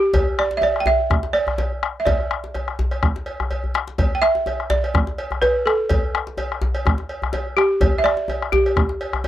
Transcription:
0.00 0.40 G4 medium
0.14 bombo low medium
0.14 cowbell medium
0.14 djembe slap medium
0.14 djembe tone medium
0.14 djembe bass medium
0.39 0.57 D5 medium
0.39 bombo rim medium
0.51 djembe slap medium
0.57 0.62 E5 medium
0.61 0.79 D5 medium
0.61 cowbell soft
0.61 djembe tone medium
0.76 bombo rim medium
0.80 0.86 G5 medium
0.86 1.36 E5 medium
0.86 bombo rim soft
0.86 djembe slap medium
0.86 djembe bass medium
1.10 bombo rim medium
1.10 bombo low medium
1.10 djembe tone medium
1.23 bombo rim soft
1.23 djembe slap medium
1.33 2.01 D5 loud
1.33 cowbell soft
1.47 bombo rim medium
1.47 djembe slap soft
1.47 djembe bass medium
1.58 cowbell soft
1.58 djembe slap medium
1.58 djembe tone medium
1.72 djembe slap soft
1.83 bombo rim medium
2.00 2.06 E5 medium
2.05 2.50 D5 medium
2.05 bombo low medium
2.05 cowbell soft
2.05 djembe slap medium
2.05 djembe tone medium
2.05 djembe bass medium
2.20 bombo rim soft
2.31 bombo rim medium
2.31 djembe slap soft
2.44 djembe slap medium
2.54 bombo rim soft
2.54 cowbell soft
2.54 djembe slap soft
2.54 djembe tone medium
2.68 bombo rim medium
2.68 djembe slap soft
2.79 bombo rim soft
2.79 djembe slap medium
2.79 djembe bass medium
2.91 bombo rim soft
2.91 cowbell soft
3.03 bombo rim medium
3.03 bombo low medium
3.03 djembe slap soft
3.03 djembe tone medium
3.16 djembe slap medium
3.26 cowbell soft
3.40 bombo rim medium
3.40 djembe bass medium
3.51 cowbell soft
3.51 djembe bass soft
3.64 djembe bass soft
3.74 bombo rim loud
3.74 djembe slap medium
3.87 djembe slap medium
3.98 bombo low medium
3.98 cowbell medium
3.98 djembe slap medium
3.98 djembe tone medium
3.98 djembe bass medium
4.15 4.22 G5 medium
4.22 4.71 E5 loud
4.22 bombo rim medium
4.22 djembe slap soft
4.35 djembe slap medium
4.46 cowbell soft
4.46 djembe tone medium
4.60 bombo rim medium
4.70 5.44 D5 medium
4.70 bombo rim soft
4.70 djembe slap medium
4.70 djembe bass medium
4.84 cowbell soft
4.94 bombo rim loud
4.94 bombo low medium
4.94 djembe tone medium
5.07 bombo rim soft
5.07 djembe slap medium
5.18 cowbell soft
5.31 bombo rim medium
5.31 djembe slap soft
5.31 djembe bass medium
5.42 5.64 B4 medium
5.42 cowbell soft
5.42 djembe slap medium
5.42 djembe tone medium
5.55 djembe slap soft
5.66 6.34 A4 medium
5.66 bombo rim medium
5.89 bombo low medium
5.89 cowbell medium
5.89 djembe slap medium
5.89 djembe tone medium
5.89 djembe bass medium
6.14 bombo rim loud
6.14 djembe slap soft
6.27 djembe slap medium
6.37 cowbell medium
6.37 djembe tone medium
6.52 bombo rim medium
6.62 bombo rim soft
6.62 djembe slap medium
6.62 djembe bass medium
6.75 cowbell soft
6.86 bombo rim medium
6.86 bombo low medium
6.86 djembe tone medium
6.98 bombo rim soft
6.98 djembe slap soft
7.09 cowbell soft
7.22 bombo rim medium
7.22 djembe slap soft
7.22 djembe bass medium
7.33 cowbell soft
7.33 djembe slap medium
7.33 djembe tone medium
7.46 djembe slap soft
7.57 8.00 G4 medium
7.57 bombo rim medium
7.81 bombo low medium
7.81 cowbell medium
7.81 djembe slap medium
7.81 djembe tone medium
7.81 djembe bass medium
7.98 8.05 E5 medium
8.04 8.49 D5 loud
8.04 bombo rim medium
8.17 djembe slap soft
8.28 cowbell soft
8.28 djembe tone medium
8.42 bombo rim medium
8.52 9.28 G4 medium
8.52 bombo rim soft
8.52 djembe slap medium
8.52 djembe bass medium
8.66 cowbell soft
8.76 bombo rim medium
8.76 bombo low loud
8.76 djembe tone medium
8.89 bombo rim soft
8.89 djembe slap medium
9.01 cowbell soft
9.13 bombo rim medium
9.13 djembe slap soft
9.13 djembe bass medium
9.24 cowbell medium
9.24 djembe slap medium
9.24 djembe tone medium

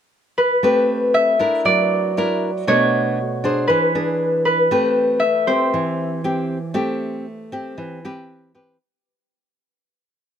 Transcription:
0.38 2.43 B4 medium
0.63 1.63 A3 medium
0.63 1.36 C4 medium
0.63 1.36 G4 medium
0.63 1.36 B4 medium
1.14 2.87 E5 medium
1.39 2.12 D4 medium
1.39 2.12 E4 medium
1.39 2.12 A#4 medium
1.65 2.65 F#3 medium
1.65 2.74 D5 medium
2.17 2.49 D4 soft
2.17 2.50 E4 soft
2.17 2.50 A#4 medium
2.67 3.67 B2 medium
2.67 3.18 A3 soft
2.67 3.18 D4 medium
2.67 3.18 F#4 medium
2.67 4.59 C#5 medium
3.44 3.91 D4 medium
3.44 3.91 G#4 medium
3.44 3.91 C5 medium
3.67 4.69 E3 medium
3.67 4.45 B4 medium
3.95 4.67 D4 medium
3.95 4.67 G#4 medium
4.45 5.53 B4 medium
4.71 5.71 A3 medium
4.71 5.22 C4 medium
4.71 5.22 G4 medium
4.71 5.22 B4 medium
5.20 6.92 E5 medium
5.47 6.20 C4 medium
5.47 6.20 G4 medium
5.47 8.24 C5 medium
5.74 6.73 E3 medium
6.24 6.57 C4 medium
6.24 6.57 G4 medium
6.74 7.74 A3 medium
6.74 7.25 C4 medium
6.74 7.26 G4 medium
7.52 7.99 C4 medium
7.52 7.99 G4 medium
7.78 8.77 E3 medium
8.05 8.51 C4 medium
8.05 8.51 G4 medium
8.05 8.51 B4 medium
8.55 8.76 C4 medium
8.55 8.76 G4 medium
8.55 8.76 B4 medium

